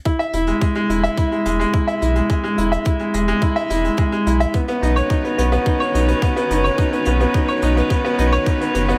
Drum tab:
HH |xxxxxxxxxxxxxxxx|xxxxxxxxxxxxxxxx|xxxxxxxxxxxxxxxx|xxxxxxxxxxxxxxxx|
BD |o---o---o---o---|o---o---o---o---|o---o---o---o---|o---o---o---o---|